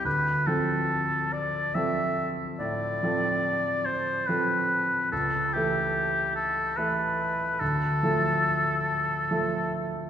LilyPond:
<<
  \new Staff \with { instrumentName = "Oboe" } { \time 12/8 \key d \dorian \tempo 4. = 47 b'8 a'4 d''8 e''8 r8 d''4. c''8 b'4 | a'8 g'4 a'8 b'4 a'2~ a'8 r8 | }
  \new Staff \with { instrumentName = "Grand piano" } { \time 12/8 \key d \dorian d,8 <f c' a'>4. <f c' a'>4 a,8 <f c' a'>4. <f c' a'>4 | cis,8 <e a a'>4. <e a a'>4 d,8 <f a a'>4. <f a a'>4 | }
>>